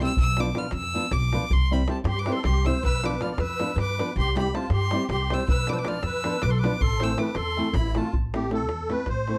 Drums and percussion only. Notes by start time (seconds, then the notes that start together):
0.09 davul high
0.17 davul low
0.37 davul high
0.45 davul high
0.55 davul high
0.63 davul high
0.71 davul high
0.83 davul high
1.11 davul high
1.22 davul high
1.33 davul high
1.42 davul high
1.50 davul low
1.80 davul high
1.88 davul high
1.97 davul high
2.05 davul high
2.16 davul high
2.26 davul high
2.44 davul high, davul low
2.55 davul high
2.65 davul high
2.75 davul high
2.84 davul low
3.04 davul high
3.12 davul high
3.21 davul high
3.30 davul high
3.38 davul high
3.50 davul high
3.60 davul high
3.78 davul high
3.90 davul high
3.99 davul high
4.09 davul high
4.18 davul low
4.37 davul high
4.46 davul high
4.55 davul high
4.63 davul high
4.70 davul high
4.81 davul high
4.91 davul high
5.10 davul high
5.30 davul high
5.41 davul high
5.48 davul low
5.67 davul high
5.77 davul high
5.85 davul high
5.94 davul high
6.03 davul high
6.13 davul high
6.24 davul high
6.42 davul high
6.53 davul high
6.64 davul high
6.81 davul low
6.92 davul high
7.00 davul high
7.10 davul high
7.18 davul high
7.27 davul high
7.35 davul high
7.46 davul high
7.66 davul high
7.74 davul high, davul low
7.86 davul high
7.95 davul high
8.04 davul high
8.13 davul low
8.34 davul high
8.42 davul high
8.51 davul high
8.69 davul high
8.79 davul high
8.90 davul high
8.97 davul high
9.06 davul high, davul low
9.18 davul high
9.27 davul high